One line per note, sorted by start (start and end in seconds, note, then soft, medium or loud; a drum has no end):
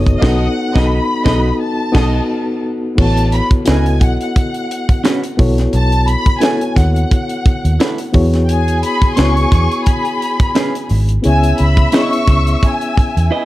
0.00 0.15 F#1 medium
0.00 0.21 B3 medium
0.00 0.22 D#4 medium
0.00 0.22 F#4 medium
0.00 0.11 A4 medium
0.00 0.11 C#5 medium
0.00 0.18 D#5 medium
0.00 0.18 D#6 loud
0.07 kick medium
0.07 closed hi-hat medium
0.18 0.46 B3 medium
0.18 0.46 D#4 loud
0.18 0.46 F#4 medium
0.18 0.45 D#5 medium
0.18 0.23 F5 medium
0.18 0.46 D#6 loud
0.22 0.47 B1 loud
0.22 0.46 F#4 medium
0.22 0.46 A4 medium
0.22 0.47 A4 medium
0.22 0.47 D#5 medium
0.22 0.76 F#5 loud
0.22 kick loud
0.22 snare loud
0.22 crash medium
0.75 0.99 B1 loud
0.75 0.98 B3 medium
0.75 0.98 D#4 medium
0.75 0.99 F#4 medium
0.75 0.99 A4 medium
0.75 0.98 D#5 medium
0.75 0.99 D#5 medium
0.75 1.61 B5 loud
0.75 0.98 D#6 medium
0.75 kick medium
0.75 snare medium
1.25 1.50 B1 loud
1.25 1.49 B3 medium
1.25 1.49 D#4 medium
1.25 1.49 F#4 medium
1.25 1.50 F#4 medium
1.25 1.50 A4 medium
1.25 1.51 A4 loud
1.25 1.49 D#5 medium
1.25 1.50 D#5 medium
1.25 1.50 D#6 medium
1.25 kick loud
1.25 snare medium
1.62 2.61 A5 loud
1.92 2.19 B1 loud
1.92 2.17 B3 loud
1.92 2.17 D#4 medium
1.92 2.18 F#4 loud
1.92 2.18 F#4 medium
1.92 2.18 A4 medium
1.92 2.19 A4 medium
1.92 2.19 B4 loud
1.92 2.19 D#5 loud
1.92 2.19 D#5 medium
1.92 2.19 D#6 medium
1.92 kick loud
1.92 crash medium
1.96 snare loud
2.95 3.39 A1 loud
2.95 3.40 B3 medium
2.95 3.41 E4 medium
2.95 3.41 F#4 medium
2.95 3.41 A4 medium
2.95 3.42 C#5 medium
2.95 kick loud
2.95 crash medium
3.00 3.31 A5 loud
3.17 closed hi-hat medium
3.32 3.49 B5 loud
3.32 closed hi-hat medium
3.51 muted fingered electric bass stroke soft
3.51 kick medium
3.51 closed hi-hat soft
3.65 4.02 C#2 medium
3.65 4.53 B3 medium
3.65 3.85 C#4 medium
3.65 4.53 E4 medium
3.65 4.53 F#4 medium
3.65 3.85 F#4 medium
3.65 4.53 A4 medium
3.65 3.85 B4 medium
3.65 4.54 D#5 medium
3.65 4.00 G#5 medium
3.65 snare loud
3.65 closed hi-hat loud
3.86 closed hi-hat medium
4.01 4.16 B1 medium
4.01 4.21 F#5 medium
4.01 kick medium
4.01 closed hi-hat medium
4.21 5.36 F#5 medium
4.21 closed hi-hat medium
4.36 kick medium
4.36 closed hi-hat medium
4.54 closed hi-hat soft
4.71 closed hi-hat medium
4.89 kick medium
4.89 closed hi-hat medium
5.04 5.22 C#4 medium
5.04 5.23 F#4 medium
5.04 5.23 B4 medium
5.04 snare loud
5.04 closed hi-hat loud
5.24 closed hi-hat medium
5.37 5.66 B1 medium
5.37 6.22 B3 medium
5.37 6.22 E4 medium
5.37 6.22 F#4 medium
5.37 6.23 A4 medium
5.37 6.23 C#5 medium
5.37 kick loud
5.37 open hi-hat medium
5.58 snare soft
5.58 closed hi-hat medium
5.73 6.14 B1 loud
5.73 6.07 A5 loud
5.73 closed hi-hat medium
5.92 closed hi-hat medium
6.08 6.43 B5 loud
6.08 closed hi-hat medium
6.26 muted fingered electric bass stroke soft
6.26 kick medium
6.26 closed hi-hat soft
6.41 7.28 B3 medium
6.41 7.29 E4 medium
6.41 6.60 E4 medium
6.41 7.29 F#4 medium
6.41 6.60 A4 medium
6.41 7.29 A4 medium
6.41 6.60 B4 medium
6.41 7.30 C#5 medium
6.41 6.76 G#5 medium
6.41 snare loud
6.41 closed hi-hat loud
6.61 closed hi-hat medium
6.76 7.04 D#2 medium
6.76 6.93 F#5 medium
6.76 kick medium
6.76 snare soft
6.76 closed hi-hat medium
6.94 8.10 F#5 medium
6.94 closed hi-hat medium
7.11 kick medium
7.11 closed hi-hat medium
7.29 closed hi-hat medium
7.46 muted fingered electric bass stroke soft
7.46 kick loud
7.46 closed hi-hat medium
7.65 7.77 D#2 medium
7.65 closed hi-hat medium
7.80 7.98 E4 medium
7.80 7.98 A4 medium
7.80 7.99 B4 medium
7.80 snare loud
7.80 closed hi-hat medium
7.98 closed hi-hat medium
8.12 8.82 E2 medium
8.12 8.97 B3 medium
8.12 8.98 E4 medium
8.12 8.98 F#4 medium
8.12 8.98 G#4 medium
8.12 8.99 C#5 loud
8.12 kick loud
8.12 open hi-hat medium
8.34 snare soft
8.34 closed hi-hat medium
8.44 8.50 G5 medium
8.49 10.87 G#4 loud
8.49 10.86 G#5 loud
8.49 8.85 G#5 loud
8.49 closed hi-hat medium
8.68 closed hi-hat medium
8.83 9.10 B5 loud
8.83 closed hi-hat medium
9.02 muted fingered electric bass stroke medium
9.02 kick medium
9.02 closed hi-hat soft
9.13 10.04 B3 medium
9.13 9.35 C#4 medium
9.13 9.19 C6 medium
9.13 closed hi-hat loud
9.17 9.45 C#2 medium
9.17 10.04 E4 medium
9.17 10.05 F#4 medium
9.17 9.36 G#4 medium
9.17 10.05 G#4 medium
9.17 9.36 B4 medium
9.17 10.05 C#5 medium
9.17 9.88 C#6 loud
9.17 snare loud
9.37 closed hi-hat medium
9.52 9.66 E2 loud
9.52 kick loud
9.52 snare soft
9.52 closed hi-hat medium
9.72 closed hi-hat soft
9.86 10.86 B5 loud
9.86 kick loud
9.86 closed hi-hat medium
10.05 closed hi-hat soft
10.22 closed hi-hat medium
10.40 kick loud
10.40 closed hi-hat medium
10.55 10.73 C#4 medium
10.55 10.74 G#4 medium
10.55 10.74 B4 medium
10.55 snare loud
10.55 closed hi-hat loud
10.75 closed hi-hat medium
10.89 11.17 G#1 medium
10.89 open hi-hat medium
11.09 closed hi-hat medium
11.22 11.52 C#2 loud
11.22 11.67 B3 medium
11.22 11.67 C#4 medium
11.22 11.68 E4 medium
11.22 11.68 G#4 medium
11.22 11.68 C#5 medium
11.22 13.45 E6 loud
11.22 closed hi-hat medium
11.26 13.45 E5 loud
11.26 11.58 G#5 loud
11.44 closed hi-hat medium
11.58 11.86 C#2 loud
11.58 closed hi-hat medium
11.62 11.95 B5 loud
11.77 kick medium
11.77 closed hi-hat medium
11.92 12.79 B3 medium
11.92 12.80 C#4 medium
11.92 12.11 E4 medium
11.92 12.80 E4 medium
11.92 12.81 G#4 medium
11.92 12.11 B4 medium
11.92 12.01 C#5 medium
11.92 12.12 D#5 medium
11.92 snare loud
11.92 closed hi-hat loud
11.96 12.64 C#6 loud
12.01 12.84 E5 medium
12.13 closed hi-hat medium
12.27 12.54 C#2 medium
12.27 kick medium
12.27 snare soft
12.27 closed hi-hat medium
12.47 closed hi-hat medium
12.63 13.45 G#5 medium
12.63 kick medium
12.63 closed hi-hat medium
12.81 closed hi-hat soft
12.97 muted fingered electric bass stroke soft
12.97 kick loud
12.97 closed hi-hat medium
13.17 13.28 E2 medium
13.17 closed hi-hat medium
13.31 13.45 E4 medium
13.31 13.45 B4 medium
13.31 13.45 D#5 medium